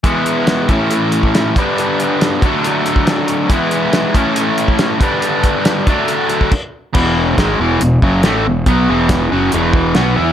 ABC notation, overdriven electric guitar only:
X:1
M:4/4
L:1/8
Q:1/4=139
K:Dlyd
V:1 name="Overdriven electric guitar" clef=bass
[E,G,B,E]3 [A,,E,A,CE]4 [=G,,D,=G,B,D]- | [=G,,D,=G,B,D]3 [D,F,A,D]4- [D,F,A,D] | [E,G,B,E]3 [A,,E,A,CE]4 [=G,,D,=G,B,D]- | [=G,,D,=G,B,D]3 [D,F,A,D]3 z2 |
[E,,B,,E,]2 [G,,^D,G,] [E,,B,,E,] [E,,B,,] [F,,C,F,] [A,,E,A,] [E,,B,,] | [B,,F,B,] [E,,B,,E,]2 [F,,C,F,] [E,,B,,E,]2 [B,,F,B,] [E,B,E] |]